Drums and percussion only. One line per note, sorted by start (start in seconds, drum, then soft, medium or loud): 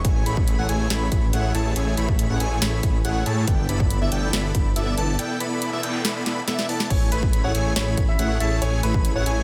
0.05 kick loud
0.05 closed hi-hat medium
0.26 closed hi-hat medium
0.37 kick loud
0.48 closed hi-hat medium
0.69 closed hi-hat medium
0.90 snare loud
0.90 closed hi-hat medium
1.12 kick loud
1.12 closed hi-hat medium
1.33 closed hi-hat medium
1.55 closed hi-hat medium
1.76 closed hi-hat medium
1.97 closed hi-hat medium
2.09 kick loud
2.19 closed hi-hat medium
2.40 closed hi-hat medium
2.62 snare loud
2.62 closed hi-hat medium
2.83 kick loud
2.83 closed hi-hat medium
3.05 closed hi-hat medium
3.26 closed hi-hat medium
3.48 kick loud
3.48 closed hi-hat medium
3.69 closed hi-hat medium
3.80 kick loud
3.90 closed hi-hat medium
4.12 closed hi-hat medium
4.33 snare loud
4.33 closed hi-hat medium
4.55 kick loud
4.55 closed hi-hat medium
4.76 closed hi-hat medium
4.98 closed hi-hat medium
5.19 closed hi-hat medium
5.40 closed hi-hat medium
5.62 closed hi-hat medium
5.83 closed hi-hat medium
6.05 snare loud
6.05 closed hi-hat medium
6.26 snare medium
6.26 closed hi-hat medium
6.48 snare medium
6.48 closed hi-hat medium
6.59 snare medium
6.69 open hi-hat medium
6.80 snare medium
6.90 kick loud
6.90 closed hi-hat medium
6.90 crash medium
7.12 closed hi-hat medium
7.23 kick loud
7.33 closed hi-hat medium
7.55 closed hi-hat medium
7.76 snare loud
7.76 closed hi-hat medium
7.97 kick loud
7.97 closed hi-hat medium
8.19 closed hi-hat medium
8.40 closed hi-hat medium
8.62 closed hi-hat medium
8.83 closed hi-hat medium
8.94 kick loud
9.05 closed hi-hat medium
9.26 closed hi-hat medium